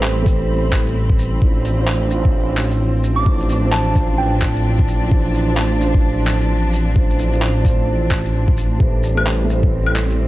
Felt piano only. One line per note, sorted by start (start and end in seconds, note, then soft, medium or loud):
0.00 0.22 A3 medium
0.00 0.25 G4 medium
0.00 0.28 B4 medium
0.00 0.30 C5 loud
0.22 1.38 A3 medium
0.22 1.39 G4 medium
0.28 1.40 B4 medium
0.28 1.41 C5 loud
1.40 1.75 D4 medium
1.40 1.76 F4 medium
1.40 1.76 C5 medium
1.77 2.05 D4 medium
1.77 2.09 F4 medium
1.81 2.10 C5 medium
2.07 3.22 D4 medium
2.11 3.24 F4 medium
2.11 3.26 C5 loud
3.24 3.59 D4 medium
3.24 3.60 F4 medium
3.24 3.61 C5 medium
3.61 3.90 D4 medium
3.61 3.93 F4 medium
3.65 3.94 C5 medium
3.92 5.07 D4 medium
3.92 5.09 F4 medium
4.00 5.11 C5 loud
5.09 5.44 D4 medium
5.09 5.45 F4 medium
5.13 5.46 C5 medium
5.46 5.74 D4 medium
5.46 5.78 F4 medium
5.50 5.79 C5 medium
5.76 6.91 D4 medium
5.80 6.93 F4 medium
5.84 6.95 C5 loud
6.94 7.28 D4 medium
6.94 7.29 F4 medium
6.94 7.30 C5 medium
7.31 7.59 D4 medium
7.31 7.63 F4 medium
7.31 7.64 C5 medium
7.61 8.76 D4 medium
7.61 8.78 F4 medium
7.69 8.80 C5 loud
8.78 9.13 A3 medium
8.78 9.14 G4 medium
8.78 9.14 B4 medium
8.83 9.15 C5 medium
9.15 9.43 A3 medium
9.15 9.46 G4 medium
9.15 9.47 B4 medium
9.19 9.48 C5 medium
9.45 10.28 A3 medium
9.45 10.28 G4 medium
9.50 10.28 B4 medium
9.50 10.28 C5 loud